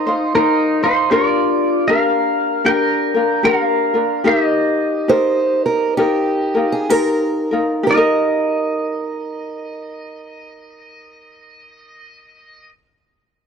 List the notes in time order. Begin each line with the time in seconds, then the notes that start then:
Already playing: D#4 C5
0.07 D#4 F4 C5
0.35 D#4 F4 A#4 C5
0.83 D#4 F4 C5
1.11 D4 F4 G4 A#4 D5
1.88 D4 F4 G4 A#4 F5
2.65 D4 F4 G4 A#4 G5
2.69 A#4
3.14 D4 F4 A#4
3.43 D4 F4 G4 A#4 F#5
3.62 F5
3.94 D4 F4 A#4
4.24 D#4 F4 G4 A#4 E5
4.29 G4
4.45 D#5
5.08 D#4 F4 G4 A#4 C5
5.66 A#4
5.97 D#4 F4 G4 A#4
6.55 D#4 F4 A#4
6.72 G#4
6.90 D#4 F4 G4 A#4
7.51 D#4 F4 A#4
7.83 G4 A#4
7.89 D#4 D#5
7.94 F4 A#4